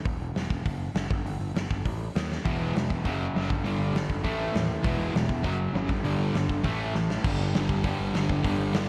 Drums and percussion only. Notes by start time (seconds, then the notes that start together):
0.05 kick, open hi-hat
0.35 snare, open hi-hat
0.50 kick
0.66 kick, open hi-hat
0.95 snare, open hi-hat
1.10 kick
1.26 open hi-hat
1.55 snare, open hi-hat
1.70 kick
1.85 kick, open hi-hat
2.15 snare, open hi-hat
2.32 snare
2.45 kick, open hi-hat
2.76 snare, open hi-hat
2.90 kick
3.05 kick, open hi-hat
3.35 snare, open hi-hat
3.50 kick
3.66 open hi-hat
3.95 snare, open hi-hat
4.10 kick
4.25 kick, open hi-hat
4.55 snare, open hi-hat
4.84 kick, open hi-hat
5.15 snare, open hi-hat
5.29 kick
5.45 kick, open hi-hat
5.75 snare, open hi-hat
5.89 kick
6.05 open hi-hat
6.34 snare, open hi-hat
6.49 kick
6.64 kick, open hi-hat
6.95 snare
7.10 snare
7.24 kick, crash
7.54 snare, open hi-hat
7.69 kick
7.83 kick, open hi-hat
8.14 snare, open hi-hat
8.29 kick
8.44 kick, open hi-hat
8.74 snare, open hi-hat